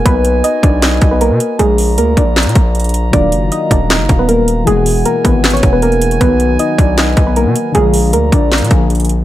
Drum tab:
HH |x-----------x-----------x-----------x-----------x-----------x-----------x-----------x-----------|x-----------o-----------x-----------x-----------x---x---x---x-----------x--x--x--x--x-----------|x-----------x-----------x-----------x-----------x-----------x-----------x-----------x-----------|x-----------o-----------x-----------x-----------x---x---x---x-----------x-----x-----x-----x-----|
CP |------------------------------------------------x-----------------------------------------------|------------------------------------------------x-----------------------------------------------|------------------------------------------------x-----------------------------------------------|------------------------------------------------x-----------------------------------------------|
SD |------------------------------------------------o-----------------------------------------------|------------------------------------------------o-----------------------------------------------|------------------------------------------------o-----------------------------------------------|------------------------------------------------o-----------------------------------------------|
BD |o-----------------------------------o-----------------------o-----------------------------------|------------------------------------o-----------------------o-----------------------------------|o-----------------------------------o-----------------------o-----------------------------------|------------------------------------o-----------------------o-----------------------------------|

HH |x-----------x-----------x-----------x-----------x-----------x-----------x-----------x-----------|x-----------o-----------x-----------x-----------x---x---x---x-----------x--x--x--x--x-----------|
CP |------------------------------------------------x-----------------------------------------------|------------------------------------------------x-----------------------------------------------|
SD |------------------------------------------------o-----------------------------------------------|------------------------------------------------o-----------------------------------------------|
BD |o-----------------------------------o-----------------------o-----------------------------------|------------------------------------o-----------------------o-----------------------------------|